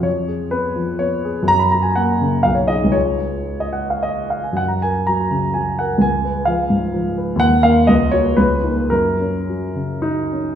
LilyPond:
<<
  \new Staff \with { instrumentName = "Grand piano" } { \time 3/4 \key fis \major \tempo 4 = 123 cis''4 b'4 cis''4 | ais''16 b''16 ais''16 gis''16 fis''4 eis''16 cis''16 dis''8 | cis''4~ cis''16 dis''16 fis''16 eis''16 dis''8 eis''16 gis''16 | fis''16 ais''16 gis''8 ais''4 gis''8 fis''8 |
gis''4 eis''4 r4 | fis''8 eis''8 dis''8 cis''8 b'4 | ais'2 dis'4 | }
  \new Staff \with { instrumentName = "Grand piano" } { \time 3/4 \key fis \major eis,8 gis'8 b8 eis8 b8 gis'8 | fis,8 fis'8 ais8 cis8 b,,8 <dis' gis'>8 | <cis, gis eis' gis'>2. | fis,8 ais'8 fis8 cis8 fis8 ais'8 |
cis,8 b'8 eis8 gis,8 eis8 b'8 | dis,8 <ais ais'>8 cis,8 <ais fis'>8 cis,8 <ais dis'>8 | fis,8 cis'8 fis8 cis8 fis8 cis'8 | }
>>